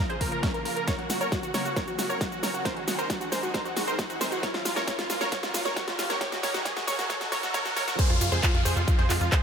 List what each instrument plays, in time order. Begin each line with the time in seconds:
Already playing: riser
0.09 analog synth pad C#3 F3 A#3 F4, supersaw synth G#4 C5, synth pluck C5, closed hi-hat
0.20 synth pluck A#4, supersaw synth A#4, kick, open hi-hat
0.32 analog synth pad C#3 F3 A#3 F4, synth pluck A#4, supersaw synth A#4, closed hi-hat
0.43 supersaw synth C#4 A#4, synth pluck A#4, kick, snare, closed hi-hat
0.54 analog synth pad C#3 F3 A#3 F4, synth pluck A#4, supersaw synth A#4, closed hi-hat
0.65 synth pluck A#4, supersaw synth A#4, open hi-hat
0.76 analog synth pad C#3 F3 A#3 F4, synth pluck A#4, supersaw synth A#4, closed hi-hat
0.87 analog synth pad C#3 F#3 A#3 F#4, supersaw synth A#4 C#5, synth pluck C#5, kick, snare, closed hi-hat, shaker
0.98 synth pluck F#4, supersaw synth F#4, closed hi-hat
1.09 analog synth pad C#3 F#3 A#3 F#4, synth pluck F#4, supersaw synth F#4, snare, open hi-hat, shaker
1.21 supersaw synth A#4 C#5, synth pluck C#5, closed hi-hat, shaker
1.32 analog synth pad C#3 F#3 A#3 F#4, synth pluck F#4, supersaw synth F#4, kick, snare, closed hi-hat, shaker
1.43 supersaw synth F#4, synth pluck F#4, closed hi-hat, shaker
1.54 analog synth pad C#3 F#3 A#3 F#4, supersaw synth A#4 C#5, synth pluck C#5, snare, open hi-hat, shaker
1.65 synth pluck F#4, supersaw synth F#4, closed hi-hat, shaker
1.76 analog synth pad C#3 F#3 A#3 F#4, supersaw synth A#4 C#5, synth pluck C#5, kick, snare, closed hi-hat, shaker
1.87 analog synth pad C#3 F#3 A#3 F#4, synth pluck F#4, supersaw synth F#4, closed hi-hat, shaker
1.98 synth pluck F#4, supersaw synth F#4, snare, open hi-hat, shaker
2.09 analog synth pad C#3 F#3 A#3 F#4, supersaw synth A#4 C#5, synth pluck C#5, closed hi-hat, shaker
2.21 synth pluck F#4, supersaw synth F#4, kick, snare, closed hi-hat, shaker
2.32 analog synth pad C#3 F#3 A#3 F#4, synth pluck F#4, supersaw synth F#4, closed hi-hat, shaker
2.43 supersaw synth A#4 C#5, synth pluck C#5, snare, open hi-hat, shaker
2.54 analog synth pad C#3 F#3 A#3 F#4, synth pluck F#4, supersaw synth F#4, closed hi-hat, shaker
2.65 analog synth pad D#3 G#3 C4 G#4, supersaw synth A#4 C5, synth pluck C5, kick, snare, closed hi-hat, shaker
2.76 synth pluck F#4, supersaw synth F#4, closed hi-hat
2.87 analog synth pad D#3 G#3 C4 G#4, synth pluck F#4, supersaw synth F#4, snare, open hi-hat, shaker
2.99 supersaw synth A#4 C5, synth pluck C5, closed hi-hat, shaker
3.10 analog synth pad D#3 G#3 C4 G#4, synth pluck F#4, supersaw synth F#4, kick, snare, closed hi-hat, shaker
3.21 synth pluck F#4, supersaw synth F#4, closed hi-hat, shaker
3.32 analog synth pad D#3 G#3 C4 G#4, supersaw synth A#4 C5, synth pluck C5, snare, open hi-hat, shaker
3.43 synth pluck F#4, supersaw synth F#4, closed hi-hat, shaker
3.54 analog synth pad D#3 G#3 C4 G#4, supersaw synth A#4 C5, synth pluck C5, kick, snare, closed hi-hat, shaker
3.65 analog synth pad D#3 G#3 C4 G#4, synth pluck F#4, supersaw synth F#4, closed hi-hat, shaker
3.77 supersaw synth F#4, synth pluck F#4, snare, open hi-hat, shaker
3.87 analog synth pad D#3 G#3 C4 G#4, supersaw synth A#4 C5, synth pluck C5, closed hi-hat, shaker
3.99 synth pluck F#4, supersaw synth F#4, kick, snare, closed hi-hat, shaker
4.10 analog synth pad D#3 G#3 C4 G#4, synth pluck F#4, supersaw synth F#4, closed hi-hat, shaker
4.21 supersaw synth A#4 C5, synth pluck C5, snare, open hi-hat, shaker
4.32 analog synth pad D#3 G#3 C4 G#4, synth pluck F#4, supersaw synth F#4, closed hi-hat, shaker
4.43 analog synth pad F3 A#3 C#4 A#4, supersaw synth A#4 C#5, synth pluck C#5, kick, snare, closed hi-hat, shaker
4.54 synth pluck F4, supersaw synth F4, snare, closed hi-hat
4.65 analog synth pad F3 A#3 C#4 A#4, synth pluck F4, supersaw synth F4, snare, open hi-hat, shaker
4.76 supersaw synth A#4 C#5, synth pluck C#5, snare, closed hi-hat, shaker
4.87 analog synth pad F3 A#3 C#4 A#4, supersaw synth A#4 C#5, synth pluck C#5, kick, snare, closed hi-hat, shaker
4.99 synth pluck F4, supersaw synth F4, snare, closed hi-hat, shaker
5.10 analog synth pad F3 A#3 C#4 A#4, synth pluck F4, supersaw synth F4, snare, open hi-hat, shaker
5.21 supersaw synth A#4 C#5, synth pluck C#5, snare, closed hi-hat, shaker
5.32 analog synth pad F3 A#3 C#4 A#4, supersaw synth A#4 C#5, synth pluck C#5, kick, snare, closed hi-hat, shaker
5.43 analog synth pad F3 A#3 C#4 A#4, synth pluck F4, supersaw synth F4, snare, closed hi-hat, shaker
5.54 synth pluck F4, supersaw synth F4, snare, open hi-hat, shaker
5.65 analog synth pad F3 A#3 C#4 A#4, supersaw synth A#4 C#5, synth pluck C#5, snare, closed hi-hat, shaker
5.76 supersaw synth A#4 C#5, synth pluck C#5, kick, snare, closed hi-hat, shaker
5.88 analog synth pad F3 A#3 C#4 A#4, synth pluck F4, supersaw synth F4, snare, closed hi-hat, shaker
5.99 synth pluck F4, supersaw synth F4, snare, open hi-hat, shaker
6.10 analog synth pad F3 A#3 C#4 A#4, supersaw synth A#4 C#5, synth pluck C#5, snare, closed hi-hat, shaker
6.21 analog synth pad F#3 A#3 D#4 A#4, supersaw synth A#4 C#5, synth pluck C#5, kick, snare, closed hi-hat, shaker
6.32 synth pluck F#4, supersaw synth F#4, snare, closed hi-hat, shaker
6.43 analog synth pad F#3 A#3 D#4 A#4, supersaw synth A#4 C#5, synth pluck C#5, snare, open hi-hat, shaker
6.54 synth pluck F#4, supersaw synth F#4, snare, closed hi-hat, shaker
6.65 analog synth pad F#3 A#3 D#4 A#4, supersaw synth A#4 C#5, synth pluck C#5, kick, snare, closed hi-hat, shaker
6.76 synth pluck F#4, supersaw synth F#4, snare, closed hi-hat, shaker
6.87 analog synth pad F#3 A#3 D#4 A#4, supersaw synth A#4 C#5, synth pluck C#5, snare, open hi-hat, shaker
6.99 supersaw synth F#4, synth pluck F#4, snare, closed hi-hat, shaker
7.10 analog synth pad F#3 A#3 D#4 A#4, supersaw synth A#4 C#5, synth pluck C#5, kick, snare, closed hi-hat, shaker
7.21 analog synth pad F#3 A#3 D#4 A#4, synth pluck F#4, supersaw synth F#4, snare, closed hi-hat, shaker
7.32 supersaw synth A#4 C#5, synth pluck C#5, kick, snare, open hi-hat, shaker
7.43 analog synth pad F#3 A#3 D#4 A#4, supersaw synth F#4, synth pluck F#4, snare, closed hi-hat, shaker
7.54 supersaw synth A#4 C#5, synth pluck C#5, kick, snare, closed hi-hat, shaker
7.65 analog synth pad F#3 A#3 D#4 A#4, supersaw synth F#4, synth pluck F#4, snare, closed hi-hat, shaker
7.76 supersaw synth A#4 C#5, synth pluck C#5, snare, open hi-hat, shaker
7.88 analog synth pad F#3 A#3 D#4 A#4, supersaw synth F#4, synth pluck F#4, snare, closed hi-hat, shaker
7.99 analog synth pad C3 F3 G#3 F4, supersaw synth G#4 C5, synth pluck C5, kick, closed hi-hat, crash, downlifter, shaker
8.10 analog synth bass F2, supersaw synth F4, synth pluck F4, closed hi-hat
8.21 analog synth bass F#2, analog synth pad C3 F3 G#3 F4, supersaw synth F4, synth pluck F4, open hi-hat, shaker
8.32 analog synth bass F2, supersaw synth G#4 C5, synth pluck C5, closed hi-hat, shaker
8.43 analog synth pad C3 F3 G#3 F4, supersaw synth F4, synth pluck F4, kick, clap, closed hi-hat, shaker
8.54 analog synth bass F2, supersaw synth F4, synth pluck F4, closed hi-hat
8.65 analog synth bass F2, analog synth pad C3 F3 G#3 F4, supersaw synth G#4 C5, synth pluck C5, open hi-hat, shaker
8.76 analog synth bass F2, supersaw synth F4, synth pluck F4, closed hi-hat, shaker
8.87 analog synth pad C3 F3 G#3 F4, synth pluck F4, supersaw synth F4, kick, closed hi-hat, shaker
8.98 analog synth bass F2, analog synth pad C3 F3 G#3 F4, supersaw synth G#4 C5, synth pluck C5, closed hi-hat
9.10 analog synth bass F2, synth pluck F4, supersaw synth F4, clap, open hi-hat, shaker
9.21 analog synth bass F2, analog synth pad C3 F3 G#3 F4, supersaw synth F4, synth pluck F4, closed hi-hat, shaker
9.32 supersaw synth G#4 C5, synth pluck C5, kick, clap, closed hi-hat, shaker